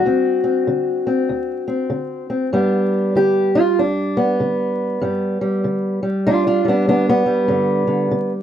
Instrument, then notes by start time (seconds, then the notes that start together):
steel-string acoustic guitar
Already playing: D4 F#4
0.06 D2 C4
0.44 C4
0.67 D3
1.07 C4
1.29 D2
1.68 C4
1.90 D3
2.30 C4
2.53 G2 G3 B3 D4
3.15 D3 G4
3.55 F4
3.79 D2 D4
4.17 B3
4.40 D3
5.01 G2 G3
5.41 G3
5.64 D3
6.03 G3
6.27 D2 D4 F4
6.47 D4 F4
6.65 G3 B3
6.69 D4
6.88 D3 B3 D4
7.09 B3
7.26 G3
7.48 G2 D3
7.87 D3
8.11 D3